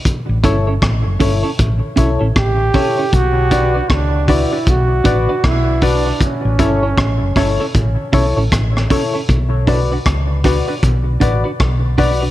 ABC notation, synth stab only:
X:1
M:4/4
L:1/16
Q:"Swing 16ths" 1/4=78
K:Bm
V:1 name="Synth stab"
z2 [EAc] z3 [EAc] [Ac] z2 [EAc] z3 [EAc] z | z2 [FBd] z3 [FBd] [Bd] z2 [FBd] z3 [FBd] z | z2 [EAc] z3 [EAc] [Ac] z2 [EAc] z3 [EAc] z | z2 [FBd] z3 [FBd] [Bd] z2 [FBd] z3 [FBd] z |]